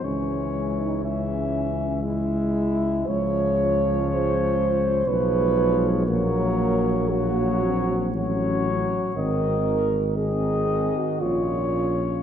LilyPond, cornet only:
\new Staff \with { instrumentName = "Cornet" } { \time 3/4 \key cis \minor \tempo 4 = 59 cis''4 e''4 e''4 | \key des \major des''2 des''4 | des''4 des''4 des''4 | ees''8 r8 ees''4 des''4 | }